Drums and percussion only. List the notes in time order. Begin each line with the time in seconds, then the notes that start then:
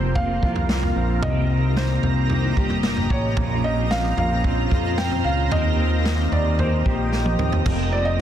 0.15 kick, floor tom
0.43 kick
0.56 floor tom
0.69 snare
0.83 floor tom
1.23 floor tom
1.77 snare
2.03 floor tom
2.30 floor tom
2.57 kick
2.70 floor tom
2.83 snare
2.97 floor tom
3.10 kick
3.37 kick, floor tom
3.91 snare
4.18 floor tom
4.44 kick, floor tom
4.71 kick
4.98 snare
5.12 floor tom
5.52 floor tom
6.05 snare
6.32 floor tom
6.59 floor tom
6.86 kick
7.12 snare
7.26 high tom
7.39 mid tom
7.52 floor tom
7.66 kick, floor tom, splash